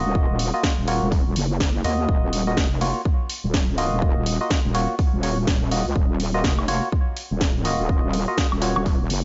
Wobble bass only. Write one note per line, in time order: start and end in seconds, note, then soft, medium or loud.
0.05 0.27 D#1 medium
0.30 0.51 D#1 loud
0.78 1.00 D#1 loud
1.02 1.24 D#1 medium
1.26 1.35 D#1 medium
1.36 1.83 F#1 medium
1.84 2.07 D#2 loud
2.09 2.55 D#1 medium
2.57 2.93 F1 loud
3.44 3.90 D#1 medium
3.92 4.14 D#1 loud
4.17 4.38 D#1 loud
4.65 4.87 D#1 loud
5.13 5.46 D#1 medium
5.47 5.84 D#1 medium
5.86 5.94 C#2 medium
5.96 6.43 D#1 medium
6.44 6.80 F1 medium
7.31 7.77 D#1 medium
7.80 8.01 D#1 loud
8.04 8.26 D#1 loud
8.52 8.74 D#1 loud
8.76 8.98 D#1 loud
9.00 9.09 D#1 medium
9.10 9.24 F#1 loud